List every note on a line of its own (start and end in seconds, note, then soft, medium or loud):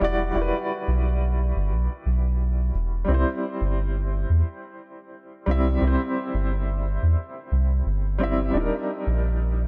0.00 0.32 E1 loud
0.00 0.30 G3 medium
0.00 0.32 E4 medium
0.00 0.33 F#4 medium
0.04 0.33 D5 medium
0.32 0.52 E1 loud
0.32 2.69 G3 medium
0.32 2.70 E4 medium
0.38 2.72 F#4 medium
0.38 2.74 B4 medium
0.88 1.53 B1 loud
1.56 1.73 G1 medium
1.72 1.88 B1 loud
2.06 2.71 B1 medium
2.74 3.05 E1 loud
3.05 3.25 C2 loud
3.05 5.42 G3 medium
3.05 5.43 C4 medium
3.11 5.45 E4 medium
3.11 5.46 C5 medium
3.61 4.26 G1 loud
4.30 4.43 E2 medium
5.46 5.78 C2 loud
5.46 5.76 G3 medium
5.46 5.78 C4 medium
5.46 5.79 E4 medium
5.51 5.80 E5 medium
5.78 5.98 C2 loud
5.78 8.15 G3 medium
5.78 8.16 C4 medium
5.84 8.18 E4 medium
5.84 8.19 C5 medium
6.34 6.99 G1 loud
7.03 7.16 E2 medium
7.52 7.82 C2 loud
7.86 8.51 G1 medium
8.19 8.49 G3 medium
8.19 8.50 C4 medium
8.19 8.51 E4 medium
8.23 8.52 E5 medium
8.51 8.71 D#1 loud
8.51 9.68 G3 medium
8.51 9.68 D4 medium
8.57 9.68 D#4 medium
8.57 9.68 A#4 medium
9.07 9.68 A#1 loud